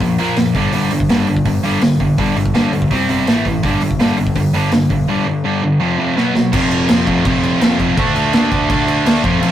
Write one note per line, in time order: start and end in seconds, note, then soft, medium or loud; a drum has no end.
0.00 0.13 A#1 medium
0.00 0.17 A#2 medium
0.00 0.18 F3 medium
0.00 kick medium
0.00 open hi-hat medium
0.18 0.31 A#1 medium
0.18 0.35 A#2 medium
0.18 0.36 F3 medium
0.18 0.37 A#3 loud
0.18 open hi-hat medium
0.36 0.50 F#1 medium
0.36 0.53 A#2 medium
0.36 0.53 F3 medium
0.36 snare loud
0.36 open hi-hat medium
0.54 0.67 G1 medium
0.54 0.72 G2 medium
0.54 0.72 D3 loud
0.54 0.73 G3 medium
0.54 kick medium
0.54 open hi-hat medium
0.73 0.86 G1 medium
0.73 0.90 G2 medium
0.73 0.90 D3 medium
0.73 0.91 G3 loud
0.73 open hi-hat medium
0.91 1.04 G1 medium
0.91 1.08 G2 medium
0.91 1.08 D3 medium
0.91 open hi-hat medium
1.00 kick medium
1.09 1.22 G1 medium
1.09 1.27 G2 medium
1.09 1.27 D3 medium
1.09 1.27 G3 medium
1.09 snare loud
1.09 open hi-hat medium
1.27 1.40 G1 medium
1.27 1.44 G2 medium
1.27 1.44 D3 medium
1.27 open hi-hat soft
1.37 kick medium
1.45 1.58 G1 medium
1.45 1.62 G2 medium
1.45 1.62 D3 medium
1.45 kick medium
1.45 open hi-hat medium
1.63 1.76 G1 medium
1.63 1.81 G2 medium
1.63 1.81 D3 medium
1.63 1.81 G3 medium
1.63 open hi-hat medium
1.81 1.93 G1 medium
1.81 1.98 G2 medium
1.81 1.98 D3 medium
1.81 snare loud
1.81 open hi-hat medium
2.00 2.12 G1 medium
2.00 2.16 G2 medium
2.00 2.16 D3 medium
2.00 kick medium
2.00 open hi-hat soft
2.18 2.31 G1 medium
2.18 2.35 G2 medium
2.18 2.35 D3 medium
2.18 2.36 G3 medium
2.18 kick loud
2.18 open hi-hat medium
2.36 2.48 G1 medium
2.36 2.53 G2 medium
2.36 2.53 D3 medium
2.36 open hi-hat medium
2.46 kick medium
2.54 2.67 G1 medium
2.54 2.71 G2 medium
2.54 2.72 D3 medium
2.54 2.72 G3 medium
2.54 snare loud
2.54 open hi-hat medium
2.72 2.85 D2 medium
2.72 2.89 G2 medium
2.72 2.89 D3 medium
2.72 open hi-hat medium
2.82 kick medium
2.90 3.03 C2 medium
2.90 3.08 C3 medium
2.90 3.08 G3 medium
2.90 3.09 C4 loud
2.90 kick medium
2.90 open hi-hat medium
3.08 3.27 G1 medium
3.08 3.26 C3 medium
3.08 3.26 G3 loud
3.08 3.27 C4 loud
3.08 open hi-hat medium
3.27 3.39 A1 medium
3.27 3.44 A2 medium
3.27 3.45 E3 medium
3.27 3.45 A3 medium
3.27 snare loud
3.27 open hi-hat medium
3.45 3.57 A1 medium
3.45 3.62 A2 medium
3.45 3.62 E3 medium
3.45 kick medium
3.45 open hi-hat medium
3.63 3.75 G1 medium
3.63 3.81 G2 medium
3.63 3.81 D3 medium
3.63 3.81 G3 medium
3.63 kick loud
3.63 open hi-hat medium
3.80 3.93 G1 medium
3.80 3.98 G2 medium
3.80 3.98 D3 medium
3.80 open hi-hat medium
3.91 kick medium
3.99 4.12 G1 medium
3.99 4.17 G2 medium
3.99 4.17 D3 medium
3.99 4.17 G3 medium
3.99 snare loud
3.99 open hi-hat medium
4.17 4.29 G1 medium
4.17 4.34 G2 medium
4.17 4.34 D3 medium
4.17 open hi-hat soft
4.27 kick medium
4.35 4.48 G1 medium
4.35 4.52 G2 medium
4.35 4.52 D3 medium
4.35 kick medium
4.35 open hi-hat medium
4.54 4.66 G1 medium
4.54 4.71 G2 medium
4.54 4.71 D3 medium
4.54 4.72 G3 medium
4.54 open hi-hat medium
4.71 4.84 G1 medium
4.71 4.88 G2 medium
4.71 4.89 D3 medium
4.71 snare loud
4.71 open hi-hat medium
4.90 5.02 G1 medium
4.90 5.07 G2 medium
4.90 5.07 D3 medium
4.90 kick medium
4.90 open hi-hat medium
5.08 5.25 G2 medium
5.08 5.25 D3 medium
5.08 5.26 G3 medium
5.26 5.43 G2 medium
5.26 5.43 D3 medium
5.44 5.61 G2 medium
5.44 5.61 D3 medium
5.44 5.62 G3 medium
5.63 5.79 G2 medium
5.63 5.79 D3 medium
5.80 5.97 F2 medium
5.80 5.98 C3 medium
5.80 5.98 F3 medium
5.99 6.16 F2 medium
5.99 6.16 C3 medium
5.99 6.16 F3 loud
6.17 6.34 B2 medium
6.17 6.34 F#3 medium
6.17 6.34 B3 medium
6.17 snare medium
6.35 6.51 B2 medium
6.35 6.51 F#3 medium
6.35 snare medium
6.52 6.87 F1 medium
6.52 6.88 F2 loud
6.52 6.88 C3 loud
6.52 7.45 F3 medium
6.52 6.90 F3 loud
6.52 7.44 A3 loud
6.52 7.43 C4 medium
6.52 7.42 F4 medium
6.52 kick loud
6.52 crash loud
6.52 crash medium
6.71 crash medium
6.89 7.06 F1 medium
6.89 7.06 F2 medium
6.89 7.06 C3 medium
6.89 7.07 F3 loud
6.89 snare loud
6.89 crash medium
7.07 7.24 F1 medium
7.07 7.24 F2 medium
7.07 7.25 C3 medium
7.07 7.26 F3 medium
7.07 kick medium
7.07 crash medium
7.25 7.42 F1 loud
7.25 7.60 F2 loud
7.25 7.60 C3 loud
7.25 7.62 F3 loud
7.25 kick loud
7.25 crash medium
7.43 7.60 C2 medium
7.43 7.61 F3 medium
7.43 7.61 A3 medium
7.43 7.61 C4 medium
7.43 7.63 F4 medium
7.43 crash medium
7.61 7.78 F1 medium
7.61 7.78 F2 medium
7.61 7.79 C3 medium
7.61 7.96 F3 medium
7.61 7.80 F3 medium
7.61 7.97 A3 medium
7.61 7.97 C4 medium
7.61 7.99 F4 medium
7.61 snare loud
7.61 crash medium
7.79 7.96 F1 medium
7.79 7.97 F2 medium
7.79 7.97 C3 loud
7.79 7.97 F3 medium
7.79 kick medium
7.79 crash medium
7.97 8.14 D2 medium
7.97 8.87 D3 medium
7.97 8.33 D3 medium
7.97 8.87 A3 medium
7.97 8.34 A3 loud
7.97 8.34 D4 loud
7.97 8.87 D4 medium
7.97 8.86 F4 medium
7.97 kick loud
7.97 crash medium
8.16 8.33 D2 medium
8.16 crash medium
8.33 8.67 D2 medium
8.33 8.51 D3 medium
8.33 8.51 A3 medium
8.33 8.51 D4 loud
8.33 snare loud
8.33 crash medium
8.52 8.68 D3 medium
8.52 8.68 A3 medium
8.52 8.69 D4 medium
8.52 kick medium
8.52 crash medium
8.69 8.86 D2 loud
8.69 9.04 D3 loud
8.69 9.05 A3 loud
8.69 9.05 D4 loud
8.69 kick loud
8.69 crash medium
8.87 9.04 D2 medium
8.87 9.04 D3 medium
8.87 9.05 A3 medium
8.87 9.05 D4 medium
8.87 9.05 F4 medium
8.87 crash medium
9.05 9.23 D2 medium
9.05 9.22 D3 medium
9.05 9.23 D3 medium
9.05 9.23 A3 medium
9.05 9.23 D4 medium
9.05 9.24 D4 medium
9.05 9.24 F4 medium
9.05 snare loud
9.05 crash loud
9.23 9.41 F1 medium
9.23 9.41 F2 loud
9.23 9.41 C3 loud
9.23 9.52 F3 loud
9.23 9.42 F3 loud
9.23 9.52 A3 loud
9.23 9.52 C4 loud
9.23 9.52 F4 loud
9.23 kick loud
9.23 crash medium
9.42 9.52 F1 loud
9.42 9.52 F2 medium
9.42 9.52 C3 medium
9.42 9.52 F3 loud
9.42 crash loud